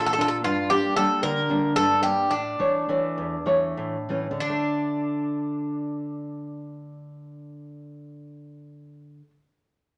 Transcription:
Already playing: nylon-string guitar A#2
0.06 bouzouki A4
0.13 bouzouki A4
0.18 nylon-string guitar A#3 D4 F4, bouzouki A4
0.28 bouzouki A4
0.44 nylon-string guitar G2, bouzouki F4
0.70 nylon-string guitar G3 A#3 D4, bouzouki G4
0.96 nylon-string guitar G3 A#3 D4, bouzouki A4
1.23 nylon-string guitar D3, bouzouki A#4
1.49 nylon-string guitar G3 A#3 D4
1.76 nylon-string guitar G2, bouzouki A4
2.03 nylon-string guitar G3 A#3 D4, bouzouki G4
2.30 nylon-string guitar A2, bouzouki D4
2.59 nylon-string guitar E3 A3 C#5
2.89 nylon-string guitar E3 A3 C#5
3.18 nylon-string guitar E2
3.46 nylon-string guitar E3 A3 C#5
3.77 nylon-string guitar A2
4.09 nylon-string guitar E3 A3 C#4
4.31 nylon-string guitar D3
4.40 bouzouki D4
4.49 nylon-string guitar A3

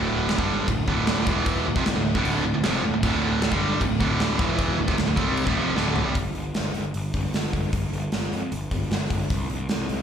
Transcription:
Already playing: picked electric bass D1, distorted electric guitar D2 A2 D3
0.29 snare, crash
0.37 picked electric bass G1, distorted electric guitar G2 D3 G3, kick
0.68 picked electric bass D1, distorted electric guitar D2 A2, kick, crash
0.87 picked electric bass D1, distorted electric guitar D2 A2 D3, kick
1.07 snare, crash
1.25 picked electric bass E1, distorted electric guitar E2 B2 E3, kick
1.46 kick, crash
1.65 picked electric bass D1, distorted electric guitar D2 A2
1.75 picked electric bass F1, distorted electric guitar F2 C3, kick
1.85 picked electric bass D1, distorted electric guitar D2 A2, snare, crash
1.94 picked electric bass D1, distorted electric guitar D2 A2
2.15 picked electric bass D1, distorted electric guitar D2 A2 D3, kick
2.25 crash
2.45 picked electric bass D1, distorted electric guitar D2 A2
2.54 picked electric bass D1, distorted electric guitar D2 A2
2.63 picked electric bass F1, distorted electric guitar F2 C3 F3, snare, crash
2.74 snare
2.83 picked electric bass D1, distorted electric guitar D2 A2
2.93 picked electric bass D1, distorted electric guitar D2 A2
3.03 picked electric bass D1, distorted electric guitar D2 A2 D3, kick, crash
3.42 snare, crash
3.51 picked electric bass G1, distorted electric guitar G2 D3 G3, kick
3.80 picked electric bass D1, distorted electric guitar D2 A2, kick, crash
3.98 picked electric bass D1, distorted electric guitar D2 A2 D3, kick
4.20 snare, crash
4.39 picked electric bass E1, distorted electric guitar E2 B2 E3, kick
4.59 kick, crash
4.78 picked electric bass D1, distorted electric guitar D2 A2
4.88 picked electric bass F1, distorted electric guitar F2 C3, kick
4.98 picked electric bass D1, distorted electric guitar D2 A2, snare, crash
5.08 picked electric bass D1, distorted electric guitar D2 A2
5.17 picked electric bass C2, distorted electric guitar C3 G3 C4, kick
5.37 crash
5.47 picked electric bass D1, distorted electric guitar D2 A2, kick
5.56 picked electric bass F1, distorted electric guitar F2 C3 F3
5.74 picked electric bass D1, distorted electric guitar D2 A2 D3, snare
5.96 floor tom
6.05 picked electric bass C2, distorted electric guitar C3 G3
6.15 picked electric bass G1, kick, open hi-hat
6.35 picked electric bass G1, open hi-hat
6.54 picked electric bass G1, snare, open hi-hat
6.74 picked electric bass G1, open hi-hat
6.94 picked electric bass G1, open hi-hat
7.14 picked electric bass G1, kick, open hi-hat
7.33 picked electric bass G1, snare, open hi-hat
7.53 picked electric bass G1, kick, open hi-hat
7.73 picked electric bass G1, kick, open hi-hat
7.93 picked electric bass G1, open hi-hat
8.12 picked electric bass G1, snare, open hi-hat
8.33 picked electric bass F2, open hi-hat
8.52 picked electric bass G1, open hi-hat
8.71 picked electric bass G1, kick, open hi-hat
8.90 picked electric bass G1, snare, open hi-hat
9.10 picked electric bass G1, kick, open hi-hat
9.30 picked electric bass C2, kick, open hi-hat
9.50 picked electric bass C2, open hi-hat
9.69 picked electric bass C2, snare, open hi-hat
9.89 picked electric bass C2, open hi-hat

